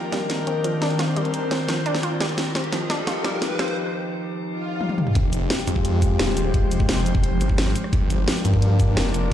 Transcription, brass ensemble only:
Already playing: D4 D#4 A#4
1.34 D4 D#4 A#4
2.72 D#4 F4 G4
5.50 G#3 F4 G4
6.89 G#3 F4 G4
8.27 D4 F4 A#4

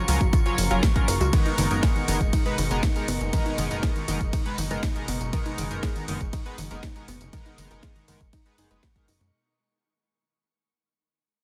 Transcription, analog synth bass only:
0.08 C#2
0.21 F#1
0.58 F#1
0.71 F#1
1.08 F#1
1.21 C#2
1.58 F#1
1.71 F#1
2.08 F#1
2.21 F#1
2.58 F#1
2.71 F#1
3.08 F#1
3.21 F#1
3.58 F#1
3.71 F#1
4.08 F#1
4.21 F#1
4.58 F#1
4.71 F#1
5.08 F#1
5.21 F#1
5.58 F#1
5.71 F#1
6.08 F#1
6.21 F#1
6.58 F#1
6.71 F#1
7.08 F#1
7.21 F#1
7.58 F#1
7.71 F#1
8.08 F#1
8.21 F#1
8.58 F#1
8.71 F#1
9.08 F#1
9.21 F#2

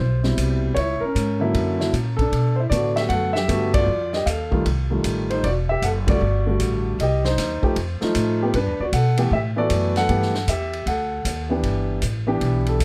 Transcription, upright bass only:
0.00 B1
0.38 C2
0.76 C#2
1.01 muted upright bass stroke
1.15 G#2
1.54 F#2
1.93 A#2
2.32 B2
2.71 A2
3.09 F#2
3.49 G2
3.87 F2
4.26 D#2
4.65 C2
5.04 A1
5.44 E1
5.82 F#1
6.21 G1
6.60 A1
6.99 C2
7.38 D#2
7.63 muted upright bass stroke
7.76 F2
8.02 muted upright bass stroke
8.15 A2
8.54 G2
8.66 E2
8.80 D2
8.93 B2
9.31 A2
9.70 F#2
10.09 G2
10.47 E2
10.86 D2
11.25 D#2
11.63 G1
12.02 A1
12.41 B1
12.80 D2

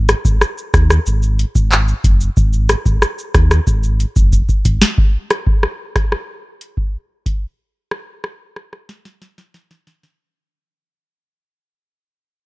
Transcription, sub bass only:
Already playing: G#1
0.25 G#1
0.74 D#2
1.07 G#1
1.55 G#1
2.04 F#1
2.37 G#1
2.86 G#1
3.35 D#2
3.67 G#1
4.16 F#1
4.65 G#1

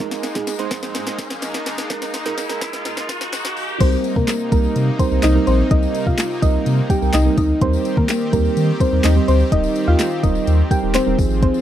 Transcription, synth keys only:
0.00 G#3 D#4 A#4
0.35 G#3 D#4 G#4
0.59 G#3 D#4 C5
1.90 G#3 D#4 A#4
2.26 G#3 D#4 A#4
2.49 G#3 D#4 A#4
3.80 G3 C4 D#4 A#4
4.52 G3 C4 D#4 A#4
4.99 G3 C4 D#4 A#4
5.11 G3 C4 D#4 A#4
5.35 G3 C4 D#4 A#4
5.71 G3 C4 D#4 A#4
6.42 G3 C4 D#4 A#4
6.90 G3 C4 D#4 G4
7.01 G3 C4 D#4 A#4
7.25 G3 C4 D#4 A#4
7.61 G3 C4 D#4 A#4
8.33 G3 C4 D#4 G4
8.80 G3 C4 D#4 A#4
8.92 G3 C4 D#4 A#4
9.16 G3 C4 D#4 C5
9.52 G3 C4 D#4 A#4
10.23 G3 C4 D#4 A#4
10.71 G3 C4 D#4 A#4
10.82 G3 C4 D#4 A#4
11.06 G3 C4 D#4 A#4
11.18 F3 C4 D#4 G#4

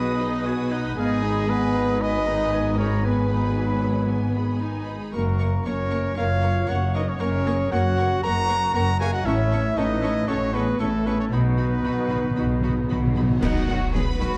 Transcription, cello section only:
Already playing: B2
0.97 G#2
5.14 F#2
5.66 F#2
6.17 F#2
6.69 F#2
7.21 F#2
7.72 F#2
8.23 F#2
8.74 F#2
9.25 A2
9.76 A2
10.28 A2
10.79 A2
11.31 B2
11.84 B2
12.37 B2
12.89 B2
13.42 D#4
13.68 F#4
13.94 G#4
14.19 F#4

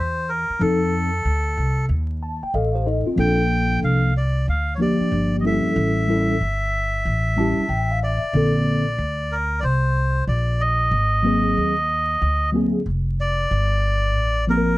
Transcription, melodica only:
Already playing: C5
0.29 A#4
0.61 A4
3.20 G5
3.84 F5
4.17 D5
4.49 F5
4.75 C#5
4.82 D5
5.40 D#5
5.46 E5
8.03 D5
9.32 A#4
9.60 C5 D5
10.28 D5
10.61 D#5
13.21 D5
14.50 A#4

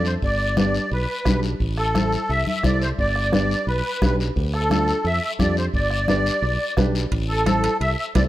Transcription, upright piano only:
Already playing: D4 F4 A4
0.57 D4 G4 B4
1.25 D4 G4 B4
1.94 E4 A4 C5
2.63 E4 A4 C5
3.32 D4 G4 B4
4.01 D4 G4 B4
4.69 D4 F4 A4
5.39 D4 F4 G4
6.09 D4 G4 B4
6.77 D4 G4 B4
7.46 E4 A4 C5
8.15 E4 A4 C5

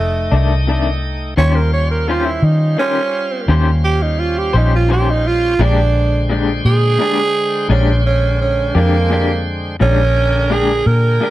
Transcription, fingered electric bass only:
Already playing: F1
0.32 C2
1.37 D#2
2.42 D#3
3.48 D#2
4.54 A#1
5.59 A#1
6.65 A#2
7.69 A#1
8.75 F2
9.81 A#1
10.86 A#2

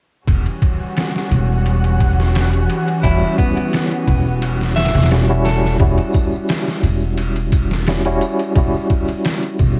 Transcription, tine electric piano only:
3.04 G3 C#4 E4 F#4
5.11 G3 C#4 E4 F#4
5.29 G3 C#4 E4 F#4
5.80 G3 C#4 E4 F#4
7.87 G3 C#4 E4 F#4
8.05 G3 C#4 E4 F#4
8.55 G3 C#4 E4 F#4

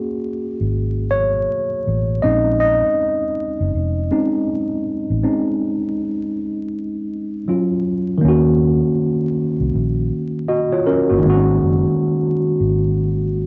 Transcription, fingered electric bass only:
0.61 G#1
1.87 A1
2.25 A#1
3.61 F#1
3.75 F1
5.10 A1
8.25 D#2
9.60 C2
9.75 A#1
11.11 G1
11.25 G#1
11.63 F#1
12.60 G#1

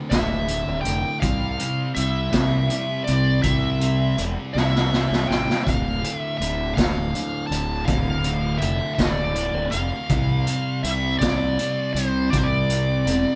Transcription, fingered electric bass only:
0.12 D1
0.68 D1
0.86 F1
1.23 C2
1.97 C2
2.33 C2
3.09 C2
3.44 C2
4.18 E1
4.55 C2
5.11 C2
5.30 A1
5.67 D1
6.40 D1
6.77 D1
7.51 D1
7.88 D1
8.62 F1
8.99 D1
9.54 D1
9.73 F1
10.10 C2
10.84 C2
11.21 C2
11.95 C2
12.33 C2
13.06 E1

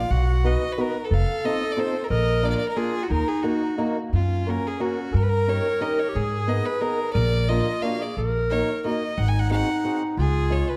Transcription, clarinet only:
Already playing: F4
0.11 F#4
1.11 A4
2.11 A#4
2.78 F4
3.09 D#4
3.77 A#3
4.12 C#4
5.14 A#4
6.09 G4
6.15 G#4
6.81 G#4
7.14 A#4
7.49 F4
7.84 F#4
8.00 G#4
8.18 A#4
9.19 D#4
10.19 F4

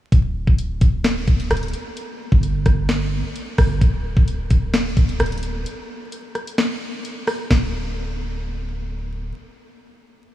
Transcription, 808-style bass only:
0.12 D1
0.47 D1
0.81 D1
1.28 D1
1.51 D1
2.32 G1
2.66 G1
3.58 G1
3.81 D1
4.17 D1
4.51 D1
4.97 D1
5.20 D1
7.51 D1

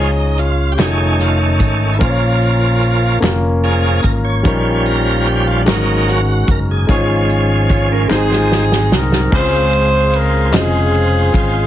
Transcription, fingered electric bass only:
Already playing: C#2
0.79 F1
1.60 G#1
2.00 A#1
3.22 F1
4.04 G#1
4.45 A#1
5.66 G#1
6.48 F#1
6.89 G#1
8.10 G#1
8.91 C2
9.32 C#2
10.53 F1
11.34 G#1

